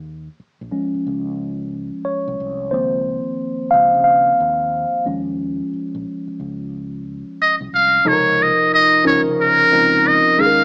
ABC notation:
X:1
M:4/4
L:1/16
Q:"Swing 16ths" 1/4=90
K:Db
V:1 name="Muted trumpet"
z16 | z16 | z12 e2 f2 | d2 e2 e2 d2 B4 e2 f2 |]
V:2 name="Tine electric piano"
z12 d4 | c6 f2 f6 z2 | z16 | [C,F,E=AB]6 [F,DEB]4 [F,CEB]4 [_A,DE_AB]2 |]
V:3 name="Tine electric piano" clef=bass
z4 [F,A,D]6 z6 | [E,F,B,C]12- [E,F,B,C]2 [F,A,D]2- | [F,A,D]4 z12 | z16 |]
V:4 name="Fretless electric bass" clef=bass
E,,2 z B,,, z2 D,,4- D,, z2 C,, C,,2 | D,,3 z3 D,, D,3 E,,3 z E,,2- | E,,2 z B,,, z2 D,,4- D,, z2 C,, C,,2 | D,,3 z3 D,, D,3 D,,3 z E,,2 |]